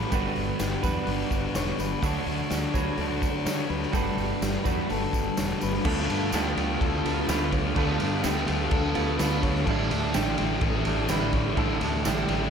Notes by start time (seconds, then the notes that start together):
Already playing: A2 E3 G3 A3 C#4 E4 B4
0.01 snare
0.11 G1 G2 D3 G3 B3 D4 F#4 A4 B4, kick, open hi-hat, tambourine
0.36 G1, open hi-hat
0.59 G1 G4, snare, open hi-hat, tambourine
0.83 E2 G3 B3 D4 F#4 B4, kick, open hi-hat, tambourine
1.07 G1 G2 D3, open hi-hat
1.11 G3
1.31 G1, kick, open hi-hat, tambourine
1.54 E1 C#5, snare, open hi-hat, tambourine
1.79 G1 B4, open hi-hat, tambourine
2.02 D2 D3 F#3 A3 D4 F#4 A4 C#5, kick, open hi-hat, tambourine
2.06 D4
2.26 D2, open hi-hat
2.50 D2 F#4, snare, open hi-hat, tambourine
2.74 D2 D3 F#3 A3 D4 F#4 B4 C#5, kick, open hi-hat, tambourine
2.97 D2 D3 A3 D4 A4, open hi-hat
3.22 kick, open hi-hat, tambourine
3.46 D3 C#5, snare, open hi-hat, tambourine
3.70 D2 B4, open hi-hat
3.83 snare
3.92 G1 G2 D3 G3 A3 D4 F#4 A4, kick, open hi-hat, tambourine
3.96 G3 B4
4.17 G1, open hi-hat, tambourine
4.42 G1 G4, snare, open hi-hat, tambourine
4.64 E2 G3 A3 D4 F#4 B4, kick, open hi-hat, tambourine
4.89 G1 G2 D3 G3 A4, open hi-hat, tambourine
5.13 G1, kick, open hi-hat, tambourine
5.37 E1 C#5, snare, open hi-hat, tambourine
5.61 G1 B4, open hi-hat, tambourine
5.74 snare
5.84 D2 D3 A3 B3 D4 A4, kick, crash
5.88 F4
6.07 G2 A3 D4 F4, ride
6.11 A3 B3
6.31 D2 D3 A3 D4 G4, snare, ride, tambourine
6.35 B3 F4
6.55 D2 A3 B3 D4 F4 G4, ride
6.81 D2 A4, kick, ride
7.05 D2 A3 B3 F4, ride
7.27 D2 D3 A3 B3 D4 F4 B4, snare, ride, tambourine
7.52 A3 D4 C#5, kick, ride
7.75 D2 D3 A3 B3 F4 A4, kick, ride
7.79 D4
7.99 G2 A3 B3 D4 F4, ride
8.22 D2 D3 A3 B3 D4 G4, snare, ride, tambourine
8.26 F4
8.47 D2 A3 B3 D4 F4 G4, ride
8.51 A3
8.71 D2 A4, kick, ride
8.95 D2 B3 F4, ride
8.99 A3
9.18 D2 D3 A3 B3 D4 B4, snare, ride, tambourine
9.22 F4
9.43 A3 D4 C#5, kick, ride
9.56 snare
9.66 A1 A2 D3 E3 G3 A3 A4, kick, ride
9.70 D4 E4
9.90 D2 E3 G3 A3 D4 E4, ride
10.14 A1 A2 D3 E3 G3 A3 D4 E4 G4, snare, ride, tambourine
10.37 A1 E3 G3 A3 D4 E4 G4, ride
10.61 A1 A4, kick, ride
10.85 A1 G3 D4 E4, ride
11.09 A1 A2 D3 E3 G3 A3 D4 E4 B4, snare, ride, tambourine
11.33 A3 C#5, kick, ride
11.37 E3
11.56 A1 A2 D3 E3 G3 A3 D4 E4 A4, kick, ride
11.80 D2 E3 A3 D4 E4, ride
11.85 G3
12.04 A1 A2 D3 E3 G3 A3 D4 E4 G4, snare, ride, tambourine
12.28 A1 G3 A3 D4 E4 G4, ride
12.32 E3